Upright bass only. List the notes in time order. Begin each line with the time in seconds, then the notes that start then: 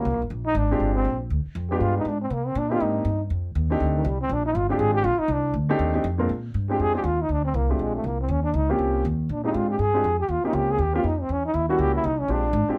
0.05 C2
0.13 A#1
0.22 G1
0.30 A#1
0.55 G#1
0.80 G1
1.05 A#1
1.30 D2
1.46 muted upright bass stroke
1.55 F2
1.80 G2
2.05 G#2
2.30 C3
2.55 A#2
2.80 G#2
3.05 G2
3.30 F2
3.55 D#2
3.80 D2
4.05 C2
4.29 A#1
4.55 G1
4.79 G#1
5.04 A#1
5.18 muted upright bass stroke
5.28 C2
5.54 D2
5.79 D#2
6.04 F2
6.29 A#2
6.54 G2
6.79 F2
7.04 D#2
7.29 D2
7.54 C2
7.79 A#1
8.04 C2
8.28 D#2
8.54 C#2
8.79 C2
9.05 D#2
9.29 A#2
9.54 G#2
9.79 G2
10.04 F2
10.28 D#2
10.44 muted upright bass stroke
10.53 C#2
10.79 D#2
11.04 F2
11.29 E2
11.54 D#2
11.78 C#2
12.04 C2
12.28 A#1
12.53 G#1
12.68 muted upright bass stroke